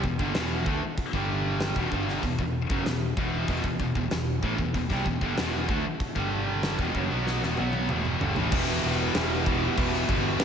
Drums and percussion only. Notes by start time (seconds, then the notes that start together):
0.04 kick
0.19 kick
0.35 snare, open hi-hat
0.66 kick
0.98 kick, open hi-hat
1.13 kick
1.60 snare, open hi-hat
1.76 kick
1.92 kick
2.08 snare
2.23 kick, open hi-hat
2.39 kick
2.70 kick
2.86 snare, open hi-hat
3.17 kick
3.48 kick, open hi-hat
3.64 kick
3.80 kick
3.95 kick
4.11 snare, open hi-hat
4.43 kick
4.58 kick
4.74 kick, open hi-hat
4.90 kick, snare
5.06 kick
5.21 kick
5.37 snare, open hi-hat
5.69 kick
6.00 kick, open hi-hat
6.16 kick
6.63 snare, open hi-hat
6.79 kick
6.95 kick
7.27 snare
7.43 snare
7.57 high tom
7.73 high tom
7.89 mid tom
8.05 mid tom
8.21 floor tom
8.36 floor tom
8.52 kick, crash
8.84 crash
9.15 snare, crash
9.46 kick, crash
9.78 kick, crash
9.94 snare
10.09 kick, crash
10.40 snare, crash